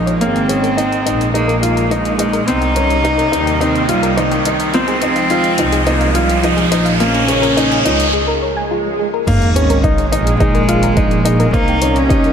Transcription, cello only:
0, 0, Header, 1, 2, 480
1, 0, Start_track
1, 0, Tempo, 566038
1, 183, Time_signature, 4, 2, 24, 8
1, 10454, End_track
2, 0, Start_track
2, 0, Title_t, "Cello"
2, 0, Program_c, 0, 42
2, 0, Note_on_c, 0, 53, 90
2, 180, Note_on_c, 0, 60, 102
2, 192, Note_off_c, 0, 53, 0
2, 1131, Note_off_c, 0, 60, 0
2, 1136, Note_on_c, 0, 58, 98
2, 1363, Note_off_c, 0, 58, 0
2, 1377, Note_on_c, 0, 58, 94
2, 1625, Note_on_c, 0, 56, 99
2, 1637, Note_off_c, 0, 58, 0
2, 2101, Note_on_c, 0, 63, 109
2, 2114, Note_off_c, 0, 56, 0
2, 3070, Note_on_c, 0, 60, 100
2, 3082, Note_off_c, 0, 63, 0
2, 3306, Note_off_c, 0, 60, 0
2, 3317, Note_on_c, 0, 55, 91
2, 3552, Note_on_c, 0, 51, 91
2, 3565, Note_off_c, 0, 55, 0
2, 4029, Note_on_c, 0, 60, 110
2, 4042, Note_off_c, 0, 51, 0
2, 4985, Note_on_c, 0, 58, 95
2, 4998, Note_off_c, 0, 60, 0
2, 5225, Note_on_c, 0, 55, 89
2, 5238, Note_off_c, 0, 58, 0
2, 5471, Note_on_c, 0, 53, 92
2, 5484, Note_off_c, 0, 55, 0
2, 5941, Note_off_c, 0, 53, 0
2, 5947, Note_on_c, 0, 61, 110
2, 6871, Note_off_c, 0, 61, 0
2, 8588, Note_on_c, 0, 56, 106
2, 9782, Note_on_c, 0, 63, 110
2, 9794, Note_off_c, 0, 56, 0
2, 10149, Note_on_c, 0, 61, 104
2, 10162, Note_off_c, 0, 63, 0
2, 10454, Note_off_c, 0, 61, 0
2, 10454, End_track
0, 0, End_of_file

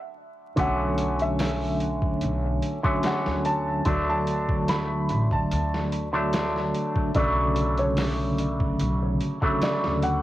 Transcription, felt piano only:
0, 0, Header, 1, 2, 480
1, 0, Start_track
1, 0, Key_signature, 2, "minor"
1, 0, Tempo, 821918
1, 333, Time_signature, 4, 2, 24, 8
1, 5970, End_track
2, 0, Start_track
2, 0, Title_t, "Felt piano"
2, 0, Program_c, 0, 0
2, 346, Note_on_c, 0, 78, 91
2, 668, Note_off_c, 0, 78, 0
2, 712, Note_on_c, 0, 76, 90
2, 1025, Note_off_c, 0, 76, 0
2, 1786, Note_on_c, 0, 78, 83
2, 1997, Note_off_c, 0, 78, 0
2, 2017, Note_on_c, 0, 81, 87
2, 2344, Note_off_c, 0, 81, 0
2, 2391, Note_on_c, 0, 81, 89
2, 2705, Note_off_c, 0, 81, 0
2, 2740, Note_on_c, 0, 83, 93
2, 3065, Note_off_c, 0, 83, 0
2, 3110, Note_on_c, 0, 81, 87
2, 3424, Note_off_c, 0, 81, 0
2, 4180, Note_on_c, 0, 74, 95
2, 4505, Note_off_c, 0, 74, 0
2, 4549, Note_on_c, 0, 73, 91
2, 4864, Note_off_c, 0, 73, 0
2, 5624, Note_on_c, 0, 74, 83
2, 5836, Note_off_c, 0, 74, 0
2, 5858, Note_on_c, 0, 78, 90
2, 5970, Note_off_c, 0, 78, 0
2, 5970, End_track
0, 0, End_of_file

